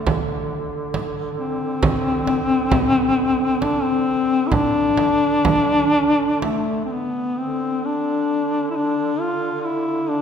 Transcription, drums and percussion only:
0.07 frame drum
0.94 frame drum
1.83 frame drum
2.27 frame drum
2.71 frame drum
3.62 frame drum
4.52 frame drum
4.97 frame drum
5.45 frame drum
6.42 frame drum

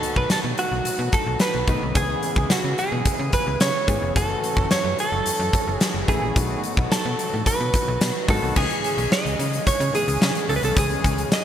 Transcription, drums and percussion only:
0.03 closed hi-hat
0.16 kick
0.30 snare, closed hi-hat
0.58 closed hi-hat
0.85 closed hi-hat
1.12 kick, closed hi-hat
1.40 snare, closed hi-hat
1.68 kick, closed hi-hat
1.95 kick, closed hi-hat
2.23 closed hi-hat
2.36 kick
2.50 snare, closed hi-hat
2.78 closed hi-hat
3.05 kick, closed hi-hat
3.33 kick, closed hi-hat
3.60 snare, closed hi-hat
3.88 kick, closed hi-hat
4.16 kick, closed hi-hat
4.44 closed hi-hat
4.57 kick
4.71 snare, closed hi-hat
4.99 closed hi-hat
5.26 closed hi-hat
5.53 kick, closed hi-hat
5.81 snare, closed hi-hat
6.08 kick, closed hi-hat
6.36 kick, closed hi-hat
6.64 closed hi-hat
6.77 kick
6.92 snare, closed hi-hat
7.19 closed hi-hat
7.46 kick, closed hi-hat
7.73 kick, closed hi-hat
8.01 snare, closed hi-hat
8.28 kick, open hi-hat
8.56 kick, crash
8.70 closed hi-hat
8.84 closed hi-hat
8.98 closed hi-hat
9.12 snare
9.26 closed hi-hat
9.40 closed hi-hat
9.53 closed hi-hat
9.67 kick, closed hi-hat
9.81 closed hi-hat
9.95 closed hi-hat
10.08 closed hi-hat
10.22 snare
10.35 closed hi-hat
10.49 open hi-hat
10.63 closed hi-hat
10.77 kick, closed hi-hat
10.91 closed hi-hat
11.04 kick, closed hi-hat
11.18 closed hi-hat
11.32 snare, tambourine

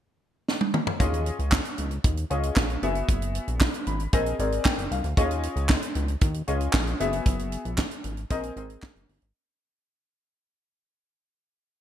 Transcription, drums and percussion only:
0.48 snare
0.61 high tom
0.74 mid tom
0.87 floor tom
1.00 kick, closed hi-hat
1.14 closed hi-hat
1.26 closed hi-hat
1.39 closed hi-hat
1.52 kick, snare, clap
1.65 closed hi-hat
1.78 closed hi-hat
1.91 closed hi-hat
2.04 kick, closed hi-hat
2.17 closed hi-hat
2.30 closed hi-hat
2.43 closed hi-hat
2.56 kick, snare, clap
2.70 closed hi-hat
2.83 closed hi-hat
2.95 closed hi-hat
3.09 kick, closed hi-hat
3.22 closed hi-hat
3.35 closed hi-hat
3.48 closed hi-hat
3.61 kick, snare, clap
3.74 closed hi-hat
3.87 closed hi-hat
4.00 closed hi-hat
4.13 kick, closed hi-hat
4.26 closed hi-hat
4.39 closed hi-hat
4.52 closed hi-hat
4.65 kick, snare, clap
4.79 closed hi-hat
4.92 closed hi-hat
5.04 closed hi-hat
5.17 kick, closed hi-hat
5.31 closed hi-hat
5.43 closed hi-hat
5.56 closed hi-hat
5.69 kick, snare, clap
5.82 closed hi-hat
5.95 closed hi-hat
6.08 closed hi-hat
6.21 kick, closed hi-hat
6.34 closed hi-hat
6.48 closed hi-hat
6.61 closed hi-hat
6.73 kick, snare, clap
6.87 closed hi-hat
7.00 closed hi-hat
7.13 closed hi-hat
7.26 kick, closed hi-hat
7.39 closed hi-hat
7.52 closed hi-hat
7.65 closed hi-hat
7.78 kick, snare, clap
7.91 closed hi-hat
8.04 closed hi-hat
8.17 closed hi-hat
8.30 kick, closed hi-hat
8.43 closed hi-hat
8.57 closed hi-hat
8.70 closed hi-hat
8.82 kick, snare, clap
8.96 closed hi-hat
9.09 open hi-hat
9.22 closed hi-hat

